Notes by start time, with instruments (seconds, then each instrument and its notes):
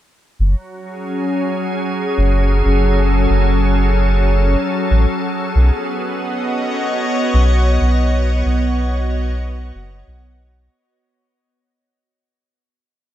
0.39 sub bass F#1, ambient pad F#3
0.71 ambient pad C#4
0.82 ambient pad G#4
2.18 sub bass F#1
2.25 ambient pad A4
2.65 sub bass F#1
3.30 sub bass F#1
4.91 sub bass A1
5.55 sub bass B1, ambient pad B3
6.10 ambient pad F#4 D#5
6.36 ambient pad C#5
7.34 sub bass B1
7.81 sub bass B1
8.45 sub bass B1
9.75 sub bass F#1
10.07 sub bass B1